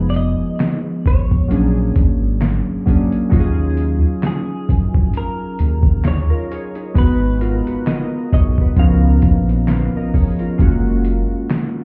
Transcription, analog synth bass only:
0.00 0.35 F1 loud
1.06 1.47 G#1 medium
1.51 1.92 A#1 loud
1.96 2.62 G#1 medium
3.33 3.99 D#2 loud
4.69 5.11 F#2 loud
5.60 6.26 D#2 medium
6.96 7.62 G#1 loud
8.33 8.74 B1 loud
8.77 9.19 C#2 loud
9.23 9.90 A#1 medium
10.60 11.26 F#1 loud

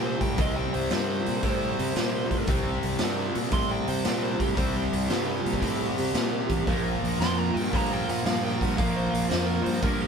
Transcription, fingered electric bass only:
0.00 0.16 A#2 medium
0.22 0.35 A2 medium
0.38 0.67 C2 medium
0.76 0.89 C2 medium
0.92 1.21 G2 medium
1.28 1.41 A#2 medium
1.44 1.73 A2 loud
1.79 1.93 C3 medium
1.96 2.25 A#2 medium
2.31 2.45 A2 medium
2.48 2.77 C2 medium
2.84 2.98 C2 medium
3.00 3.29 G2 medium
3.36 3.50 A#2 medium
3.52 3.82 A2 loud
3.88 4.02 C3 medium
4.07 4.35 A#2 medium
4.40 4.55 A2 medium
4.58 4.87 C2 medium
4.93 5.07 C2 medium
5.11 5.40 G2 medium
5.46 5.60 A#2 medium
5.62 5.92 A2 loud
5.99 6.13 C3 medium
6.14 6.44 A#2 medium
6.50 6.65 A1 medium
6.68 6.97 A#1 medium
7.02 7.17 A#1 medium
7.20 7.49 F2 medium
7.55 7.70 G2 medium
7.74 8.03 G2 loud
8.08 8.22 A#2 medium
8.25 8.55 G2 medium
8.62 8.76 G2 medium
8.79 9.08 A#1 medium
9.14 9.28 A#1 medium
9.31 9.60 F2 medium
9.67 9.81 G2 medium
9.83 10.07 G2 loud

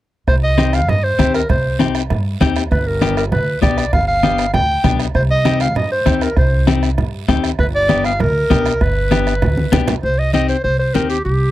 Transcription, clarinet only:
0.28 0.35 C5 medium
0.43 0.75 D#5 loud
0.74 0.90 F5 medium
0.89 1.05 D#5 loud
1.03 1.34 C5 loud
1.34 1.48 A#4 medium
1.49 1.78 C5 medium
2.71 2.88 B4 medium
2.86 3.16 A#4 medium
3.17 3.24 A#4 medium
3.32 3.60 B4 loud
3.62 3.90 D5 medium
3.93 4.07 F5 loud
4.07 4.50 F5 loud
4.53 4.96 G5 loud
5.15 5.22 C5 medium
5.30 5.59 D#5 loud
5.61 5.75 F5 medium
5.76 5.90 D#5 medium
5.91 6.23 C5 medium
6.22 6.37 A#4 medium
6.38 6.66 C5 medium
7.59 7.66 B4 medium
7.75 8.03 D5 loud
8.05 8.22 F5 loud
8.20 8.83 A#4 loud
8.82 9.88 B4 medium
10.03 10.20 C5 loud
10.19 10.32 D#5 loud
10.33 10.48 D#5 medium
10.49 10.63 C5 medium
10.64 10.78 C5 loud
10.79 10.95 C5 medium
10.94 11.09 A#4 medium
11.09 11.24 G4 medium
11.24 11.51 G4 medium

